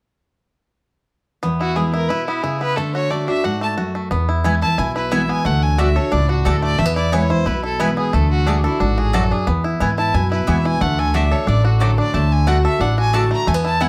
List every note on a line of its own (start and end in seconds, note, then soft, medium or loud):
1.43 2.07 E2 medium
1.43 1.75 B3 medium
1.60 1.92 E4 soft
1.60 1.77 F#4 medium
1.76 2.08 E3 medium
1.76 2.08 G#3 medium
1.76 2.24 B3 medium
1.76 2.09 B3 medium
1.76 2.09 E4 medium
1.76 1.93 G#4 medium
1.93 2.09 E4 medium
1.93 2.10 A#4 medium
2.08 2.42 B2 medium
2.08 2.42 E4 medium
2.08 2.26 B4 medium
2.27 2.60 B3 medium
2.27 2.44 E4 medium
2.43 2.76 C#3 medium
2.43 2.77 E4 medium
2.43 2.59 G#4 medium
2.60 2.77 B3 medium
2.60 2.78 B4 loud
2.76 3.09 D3 medium
2.76 3.09 A3 medium
2.76 2.94 A4 medium
2.94 3.41 F#4 medium
2.94 3.12 C#5 medium
3.10 3.27 D3 medium
3.10 3.58 A3 medium
3.10 3.28 A3 medium
3.10 3.28 D4 medium
3.10 3.27 F#4 medium
3.10 3.27 D5 medium
3.28 3.74 D4 medium
3.28 3.44 D4 soft
3.28 3.44 F#4 medium
3.28 3.46 E5 medium
3.44 3.76 G#2 medium
3.44 3.76 F#4 medium
3.44 3.62 F#5 medium
3.61 3.94 A3 soft
3.61 3.72 A5 loud
3.77 4.10 F#2 medium
3.77 4.11 F#4 medium
3.95 4.10 A3 medium
4.11 4.63 E2 medium
4.11 4.75 E2 medium
4.11 4.59 B3 medium
4.29 4.43 E4 medium
4.44 4.62 E3 medium
4.44 4.62 G#3 medium
4.44 4.54 B3 medium
4.44 4.62 B3 medium
4.44 4.61 E4 medium
4.44 4.54 E4 medium
4.44 4.62 E4 medium
4.44 4.54 B4 medium
4.44 4.55 G#5 medium
4.62 4.79 B3 soft
4.62 4.77 E4 medium
4.62 4.78 E4 medium
4.62 4.80 A5 loud
4.78 5.30 B1 medium
4.78 5.42 B2 medium
4.78 4.95 E4 medium
4.78 4.95 G#5 medium
4.96 5.11 E4 medium
4.96 5.13 B4 medium
5.11 5.44 E3 medium
5.11 5.44 G#3 medium
5.11 5.21 B3 medium
5.11 5.45 B3 medium
5.11 5.21 E4 medium
5.11 5.45 E4 medium
5.11 5.21 B4 medium
5.11 5.31 E5 medium
5.11 5.22 G#5 medium
5.29 5.44 B3 medium
5.29 5.47 G#5 loud
5.45 5.97 D2 medium
5.45 5.78 D3 medium
5.45 5.93 A3 medium
5.45 5.64 F#5 medium
5.63 5.80 G#5 loud
5.78 5.96 D3 medium
5.78 5.88 A3 medium
5.78 5.96 A3 medium
5.78 5.96 D4 medium
5.78 6.26 F#4 medium
5.78 5.88 F#4 medium
5.78 5.95 F#4 medium
5.78 5.88 D5 medium
5.78 5.97 E5 medium
5.78 5.89 A5 medium
5.96 6.12 D4 soft
5.96 6.12 F#4 medium
5.96 6.42 A4 medium
5.96 6.13 C#5 medium
6.12 6.41 C#2 medium
6.12 6.76 A2 medium
6.12 6.60 D4 medium
6.12 6.29 D5 medium
6.29 6.76 F#4 medium
6.29 6.47 F#4 soft
6.45 6.74 D2 medium
6.45 6.78 D3 medium
6.45 6.55 A3 medium
6.45 6.78 A3 medium
6.45 6.78 D4 medium
6.45 6.55 F#4 medium
6.45 6.78 F#4 medium
6.45 6.79 A4 medium
6.45 6.63 A4 medium
6.45 6.55 D5 medium
6.45 6.56 A5 medium
6.63 6.77 A3 medium
6.63 6.80 D5 medium
6.79 7.31 E2 medium
6.79 7.43 E2 medium
6.79 6.86 A3 medium
6.79 6.95 E5 medium
6.86 7.12 B3 medium
6.95 7.11 E4 medium
6.95 7.14 D5 medium
7.12 7.45 E3 medium
7.12 7.45 G#3 medium
7.12 7.22 B3 medium
7.12 7.45 B3 medium
7.12 7.29 E4 medium
7.12 7.22 E4 medium
7.12 7.46 E4 medium
7.12 7.22 B4 medium
7.12 7.32 C#5 medium
7.12 7.22 G#5 medium
7.30 7.45 E4 medium
7.30 7.48 C5 medium
7.46 7.98 B1 medium
7.46 8.10 B2 medium
7.46 7.62 E4 medium
7.46 7.63 B4 medium
7.63 7.78 E4 medium
7.63 7.81 A4 medium
7.80 8.12 E3 medium
7.80 8.12 G#3 medium
7.80 7.89 B3 medium
7.80 8.12 B3 medium
7.80 8.13 E4 medium
7.80 7.89 E4 medium
7.80 8.13 E4 medium
7.80 7.97 B4 medium
7.80 7.90 B4 medium
7.80 7.90 G#5 medium
7.97 8.13 B3 medium
7.97 8.15 G#4 medium
8.13 8.65 D2 medium
8.13 8.46 D3 medium
8.13 8.61 A3 medium
8.13 8.31 A4 medium
8.31 8.49 F#4 medium
8.46 8.64 D3 medium
8.46 8.56 A3 medium
8.46 8.64 A3 medium
8.46 8.79 D4 medium
8.46 8.64 D4 medium
8.46 8.57 F#4 medium
8.46 8.63 F#4 medium
8.46 8.64 G#4 medium
8.46 8.57 D5 medium
8.46 8.57 A5 medium
8.64 8.80 D4 medium
8.64 8.82 E4 medium
8.64 8.80 F#4 medium
8.64 9.10 A4 medium
8.80 9.32 A1 medium
8.80 9.12 G#2 medium
8.80 9.28 D4 medium
8.80 9.00 F#4 medium
8.98 9.44 F#4 medium
8.98 9.16 G#4 medium
9.13 9.46 F#2 medium
9.13 9.47 F#3 medium
9.13 9.23 A3 medium
9.13 9.23 F#4 medium
9.13 9.34 A4 medium
9.13 9.23 D5 medium
9.13 9.23 A5 loud
9.31 9.47 D4 medium
9.31 9.48 G#4 medium
9.47 10.11 E2 medium
9.47 9.73 E2 medium
9.47 9.95 B3 medium
9.64 9.79 E4 medium
9.80 10.09 G#2 medium
9.80 10.13 E3 medium
9.80 10.13 G#3 medium
9.80 9.90 B3 medium
9.80 10.13 B3 medium
9.80 9.97 E4 medium
9.80 9.90 E4 medium
9.80 10.13 E4 medium
9.80 9.90 B4 medium
9.80 9.91 G#5 medium
9.98 10.13 E4 medium
9.98 10.16 A5 loud
10.14 10.43 F#2 medium
10.14 10.78 B2 medium
10.14 10.30 E4 medium
10.14 10.31 G#5 medium
10.31 10.64 E4 medium
10.31 10.49 B4 medium
10.47 10.76 E2 medium
10.47 10.79 E3 medium
10.47 10.81 E3 medium
10.47 10.80 G#3 medium
10.47 10.57 B3 medium
10.47 10.80 B3 medium
10.47 10.57 E4 medium
10.47 10.80 E4 medium
10.47 10.57 B4 medium
10.47 10.67 E5 medium
10.47 10.57 G#5 medium
10.65 10.81 E4 medium
10.65 10.83 G#5 loud
10.81 11.32 D2 loud
10.81 11.13 D3 medium
10.81 12.13 A3 medium
10.81 11.00 F#5 medium
10.99 11.31 A4 medium
10.99 11.17 G#5 loud
11.14 11.46 D3 medium
11.14 11.24 A3 medium
11.14 11.47 A3 medium
11.14 11.46 D4 medium
11.14 11.47 D4 medium
11.14 11.24 F#4 medium
11.14 11.47 F#4 medium
11.14 11.24 D5 medium
11.14 11.33 E5 medium
11.14 11.24 A5 medium
11.31 11.78 A4 medium
11.31 11.49 C#5 medium
11.47 11.99 A1 medium
11.47 12.12 A2 medium
11.47 11.95 D4 medium
11.47 11.65 D5 medium
11.65 12.11 F#4 medium
11.65 11.84 F#4 soft
11.80 12.13 D3 medium
11.80 12.28 F#3 medium
11.80 11.90 A3 medium
11.80 12.13 A3 medium
11.80 12.13 D4 medium
11.80 11.90 F#4 medium
11.80 12.14 F#4 medium
11.80 11.98 A4 medium
11.80 11.91 D5 medium
11.80 11.91 A5 medium
11.98 12.44 D4 medium
11.98 12.16 D5 medium
12.14 12.65 D2 medium
12.14 12.46 D3 medium
12.14 12.62 A3 medium
12.14 12.33 A5 medium
12.32 12.50 G#5 medium
12.47 12.79 D3 medium
12.47 12.57 A3 medium
12.47 12.79 A3 medium
12.47 12.80 D4 medium
12.47 12.95 F#4 medium
12.47 12.57 F#4 medium
12.47 12.80 F#4 medium
12.47 12.57 D5 medium
12.47 12.64 F#5 medium
12.47 12.57 A5 loud
12.64 13.11 A4 medium
12.64 12.83 E5 medium
12.80 13.31 A1 medium
12.80 13.45 A2 medium
12.80 13.28 D4 medium
12.80 12.98 F#5 medium
12.98 13.44 F#4 medium
12.98 13.16 G#5 loud
13.13 13.46 D3 medium
13.13 13.23 A3 medium
13.13 13.46 A3 medium
13.13 13.46 D4 medium
13.13 13.24 F#4 medium
13.13 13.47 F#4 medium
13.13 13.47 A4 soft
13.13 13.24 D5 loud
13.13 13.24 A5 medium
13.13 13.32 A5 medium
13.31 13.46 A3 medium
13.31 13.49 A#5 loud
13.47 13.89 E2 medium
13.47 13.89 E2 loud
13.47 13.54 A3 medium
13.47 13.65 G#5 medium
13.54 13.81 B3 medium
13.64 13.79 E4 medium
13.64 13.83 A5 loud
13.80 13.89 E3 medium
13.80 13.89 G#3 medium
13.80 13.89 B3 medium
13.80 13.89 E4 medium
13.80 13.89 B4 medium
13.80 13.89 F#5 medium
13.80 13.89 G#5 medium